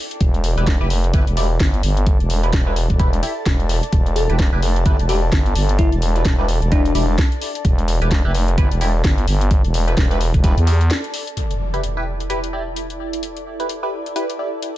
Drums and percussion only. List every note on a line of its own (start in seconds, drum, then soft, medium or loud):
0.11 closed hi-hat medium
0.21 kick loud
0.21 closed hi-hat medium
0.34 closed hi-hat soft
0.44 open hi-hat loud
0.58 closed hi-hat soft
0.67 kick loud
0.67 snare loud
0.67 closed hi-hat medium
0.90 open hi-hat loud
1.04 closed hi-hat soft
1.14 kick loud
1.14 closed hi-hat medium
1.27 closed hi-hat soft
1.37 open hi-hat loud
1.60 kick loud
1.60 snare loud
1.60 closed hi-hat medium
1.74 closed hi-hat soft
1.83 open hi-hat loud
1.97 closed hi-hat medium
2.07 kick loud
2.07 closed hi-hat medium
2.20 closed hi-hat soft
2.30 open hi-hat loud
2.43 closed hi-hat soft
2.53 kick loud
2.53 snare loud
2.53 closed hi-hat medium
2.76 open hi-hat medium
2.90 kick medium
2.90 closed hi-hat soft
3.00 kick loud
3.00 closed hi-hat medium
3.13 closed hi-hat soft
3.23 open hi-hat loud
3.46 kick loud
3.46 snare loud
3.46 closed hi-hat medium
3.60 closed hi-hat soft
3.69 open hi-hat loud
3.83 closed hi-hat medium
3.93 kick loud
3.93 closed hi-hat medium
4.06 closed hi-hat soft
4.16 open hi-hat loud
4.30 closed hi-hat soft
4.39 kick loud
4.39 snare loud
4.39 closed hi-hat medium
4.62 open hi-hat medium
4.76 closed hi-hat soft
4.86 kick loud
4.86 closed hi-hat medium
4.99 closed hi-hat soft
5.09 open hi-hat loud
5.32 kick loud
5.32 snare loud
5.32 closed hi-hat medium
5.46 closed hi-hat soft
5.55 open hi-hat loud
5.69 closed hi-hat medium
5.79 kick loud
5.79 closed hi-hat medium
5.92 closed hi-hat soft
6.02 open hi-hat loud
6.16 closed hi-hat soft
6.25 kick loud
6.25 snare loud
6.25 closed hi-hat medium
6.48 open hi-hat medium
6.62 closed hi-hat soft
6.72 kick loud
6.72 closed hi-hat medium
6.85 closed hi-hat soft
6.95 open hi-hat loud
7.18 kick loud
7.18 snare loud
7.18 closed hi-hat medium
7.32 closed hi-hat soft
7.42 open hi-hat medium
7.55 closed hi-hat medium
7.65 kick loud
7.65 closed hi-hat medium
7.78 closed hi-hat soft
7.88 open hi-hat loud
8.02 closed hi-hat soft
8.11 kick loud
8.11 snare loud
8.11 closed hi-hat medium
8.35 open hi-hat medium
8.48 closed hi-hat soft
8.58 kick loud
8.58 closed hi-hat medium
8.71 closed hi-hat medium
8.81 open hi-hat loud
9.04 kick loud
9.04 snare loud
9.04 closed hi-hat medium
9.18 closed hi-hat soft
9.28 open hi-hat medium
9.41 closed hi-hat medium
9.51 kick loud
9.51 closed hi-hat medium
9.65 closed hi-hat soft
9.74 open hi-hat loud
9.88 closed hi-hat soft
9.97 kick loud
9.97 snare loud
9.97 closed hi-hat medium
10.11 closed hi-hat soft
10.21 open hi-hat medium
10.34 kick medium
10.34 closed hi-hat soft
10.44 kick loud
10.44 closed hi-hat medium
10.58 closed hi-hat medium
10.67 open hi-hat loud
10.81 closed hi-hat soft
10.90 snare loud
10.90 closed hi-hat medium
11.04 closed hi-hat soft
11.14 open hi-hat medium
11.27 closed hi-hat medium
11.37 closed hi-hat medium
11.51 closed hi-hat soft
11.74 closed hi-hat soft
11.84 closed hi-hat medium
12.20 closed hi-hat soft
12.30 closed hi-hat medium
12.44 closed hi-hat soft
12.76 closed hi-hat medium
12.90 closed hi-hat soft
13.13 closed hi-hat medium
13.23 closed hi-hat medium
13.37 closed hi-hat soft
13.60 closed hi-hat soft
13.69 closed hi-hat medium
14.06 closed hi-hat soft
14.16 closed hi-hat medium
14.30 closed hi-hat soft
14.62 closed hi-hat medium